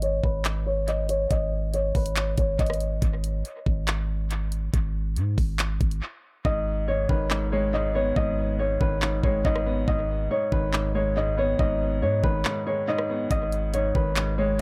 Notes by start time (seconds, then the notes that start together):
Already playing: G#1 B4 D#5
0.02 C#5, closed hi-hat
0.23 G#1 B4, kick
0.45 clap, closed hi-hat
0.66 C#5
0.88 D#5, closed hi-hat
1.09 C#5, closed hi-hat
1.31 G#1 D#5, kick, closed hi-hat
1.74 C#5, closed hi-hat
1.95 G#1 B4, kick, closed hi-hat, open hi-hat
2.06 closed hi-hat
2.16 clap, closed hi-hat
2.38 G#1 C#5, kick, closed hi-hat
2.59 G#1 D#5, kick, closed hi-hat
2.66 cross-stick, closed hi-hat
2.74 closed hi-hat
2.80 closed hi-hat
3.02 G#1, kick, closed hi-hat
3.24 closed hi-hat
3.45 closed hi-hat
3.66 G#1, kick
3.88 clap, closed hi-hat
4.31 closed hi-hat
4.52 closed hi-hat
4.74 G#1, kick, closed hi-hat
5.16 G#2, closed hi-hat
5.38 G#1, kick, open hi-hat
5.59 clap, closed hi-hat
5.81 G#1, kick, closed hi-hat
5.91 closed hi-hat
6.45 G#1 G#2 D#5, kick
6.88 G#2 C#5
7.09 G#1 D#3 B4, kick
7.31 G#2, clap
7.52 G#3 C#5
7.73 G#2 D#5
7.95 B3 C#5
8.16 G#1 G#2 D#5, kick
8.59 G#2 C#5
8.81 G#1 D#3 B4, kick
9.02 G#2, clap
9.24 G#1 G#3 C#5, kick
9.45 G#1 G#2 D#5, kick
9.56 cross-stick
9.66 B3
9.88 G#1 G#2 D#5, kick
10.30 G#2 C#5
10.52 G#1 D#3 B4, kick
10.73 G#2, clap
10.95 G#3 C#5
11.16 G#2 D#5
11.38 B3 C#5
11.59 G#1 G#2 D#5, kick
12.02 G#2 C#5
12.23 G#1 D#3 B4, kick
12.45 G#2, clap
12.67 G#3 C#5
12.88 G#2 D#5
12.99 cross-stick
13.09 B3
13.31 G#1 G#2 D#5, kick, closed hi-hat
13.52 closed hi-hat
13.74 G#2 C#5, closed hi-hat
13.95 G#1 D#3 B4, kick
14.16 G#2, clap, closed hi-hat
14.38 G#3 C#5